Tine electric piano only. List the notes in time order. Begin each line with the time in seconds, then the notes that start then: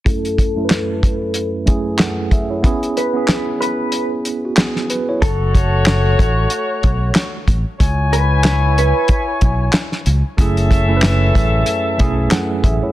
0.05 F#2 A3 C#4 E4 A4
0.55 F#2 A3 C#4 E4 A4
0.64 B4
1.65 F#2 A3 C#4 E4 G#4
2.00 A4 F#5
2.32 G#4 E5
2.50 E4 C#5
2.63 B3 C#4 E4 G#4
3.13 B3 C#4 E4 G#4
4.45 F#4
4.57 B3 G#4
4.90 B4
5.09 E4 C#5
10.37 F#2 A3 C#4 E4 G#4
10.87 F#2 A3 C#4 E4 A4
10.97 B4
11.97 F#2 A3 C#4 E4 G#4
12.32 A4 F#5
12.64 G#4 E5
12.83 E4 C#5